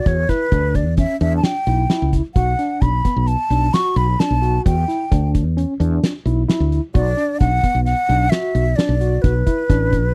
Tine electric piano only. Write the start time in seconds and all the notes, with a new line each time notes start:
Already playing: F#4
0.29 E4
0.52 D4
0.98 C#4
1.21 D4
1.67 E4
1.90 E4
2.36 F#4
2.59 D4
3.05 B3
3.51 D4
3.74 F#4
4.20 D4
4.42 F#4
4.88 E4
5.11 D4
5.57 C#4
5.80 D4
6.26 E4
6.48 E4
6.94 F#4
7.17 D4
7.63 B3
8.09 D4
8.32 F#4
8.78 D4
9.01 F#4
9.46 E4
9.70 D4